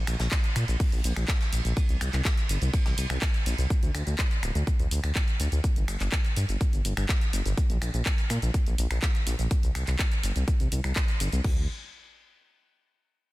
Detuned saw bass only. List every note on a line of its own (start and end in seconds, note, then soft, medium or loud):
0.08 0.16 A#1 medium
0.20 0.28 A#1 medium
0.56 0.64 A#2 medium
0.68 0.76 A#1 medium
0.92 1.00 A#1 medium
1.04 1.12 A#1 medium
1.17 1.25 A#1 medium
1.53 1.61 A#1 medium
1.65 1.73 A#1 medium
1.89 1.97 C2 medium
2.01 2.09 C2 medium
2.13 2.21 C2 medium
2.49 2.58 G1 medium
2.62 2.70 C2 medium
2.86 2.94 C2 medium
2.98 3.06 C2 medium
3.10 3.18 C2 medium
3.46 3.54 A#1 loud
3.58 3.66 C2 medium
3.83 3.91 D2 medium
3.94 4.03 D2 medium
4.07 4.15 D2 medium
4.43 4.51 D1 medium
4.55 4.63 D2 medium
4.79 4.87 D2 medium
4.91 4.99 D2 medium
5.04 5.12 D2 medium
5.40 5.48 D2 medium
5.52 5.60 D2 medium
5.76 5.84 G1 medium
5.88 5.96 G1 medium
6.00 6.08 G1 medium
6.37 6.45 G2 medium
6.49 6.57 G1 medium
6.73 6.81 G1 medium
6.85 6.93 G1 medium
6.97 7.05 G1 medium
7.33 7.41 G1 loud
7.45 7.54 G1 medium
7.70 7.78 A#1 medium
7.82 7.90 A#1 loud
7.94 8.02 A#1 medium
8.30 8.38 A#2 medium
8.42 8.50 A#1 medium
8.66 8.75 A#1 medium
8.78 8.87 A#1 medium
8.91 8.99 A#1 medium
9.27 9.35 A#1 loud
9.39 9.47 A#1 medium
9.63 9.71 C2 medium
9.75 9.83 C2 loud
9.88 9.96 C2 medium
10.24 10.32 G1 medium
10.36 10.44 C2 medium
10.60 10.68 C2 medium
10.72 10.80 C2 medium
10.84 10.92 C2 medium
11.20 11.29 G1 loud
11.33 11.41 C2 medium
11.44 11.67 D2 loud